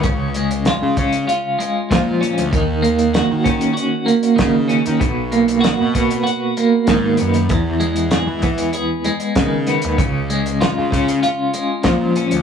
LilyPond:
<<
  \new Staff \with { instrumentName = "Clean electric guitar" } { \time 4/4 \key cis \mixolydian \tempo 4 = 97 cis8 gis8 eis'8 cis'8 eis'8 gis8 eis8 cis'8 | dis8 ais8 fis'8 cis'8 fis'8 ais8 dis8 cis'8 | b,8 ais8 fis'8 b8 fis'8 ais8 dis8 b8 | e,8 gis8 gis'8 b8 gis'8 gis8 dis8 b8 |
cis8 gis8 eis'8 cis'8 eis'8 gis8 eis8 cis'8 | }
  \new Staff \with { instrumentName = "Picked electric bass" } { \clef bass \time 4/4 \key cis \mixolydian cis,4~ cis,16 cis16 cis8 r4 ais,8. d,16 | dis,4~ dis,16 dis16 dis8 r4 cis8. dis16 | b,,4~ b,,16 b,16 b,8 r4 gis,8 fis,8 | e,4~ e,16 e16 e8 r4 cis8. dis,16 |
cis,4~ cis,16 cis16 cis8 r4 ais,8. d,16 | }
  \new DrumStaff \with { instrumentName = "Drums" } \drummode { \time 4/4 <hh bd>8 hh16 hh16 <hh sn>8 <hh bd>16 hh16 hh8 hh8 <hh bd sn>8 <hh sn>16 hh16 | <hh bd>8 hh16 hh16 <hh sn>8 <hh bd>16 hh16 hh8 hh16 hh16 <hh bd sn>8 hh16 hh16 | <hh bd>8 hh16 hh16 <hh sn>8 <hh bd>16 hh16 hh8 hh8 <hh bd sn>8 hh16 hh16 | <hh bd>8 hh16 hh16 <hh sn>8 <hh bd>16 hh16 hh8 hh16 hh16 <hh bd sn>8 <hh sn>16 hh16 |
<hh bd>8 hh16 hh16 <hh sn>8 <hh bd>16 hh16 hh8 hh8 <hh bd sn>8 hh16 hh16 | }
>>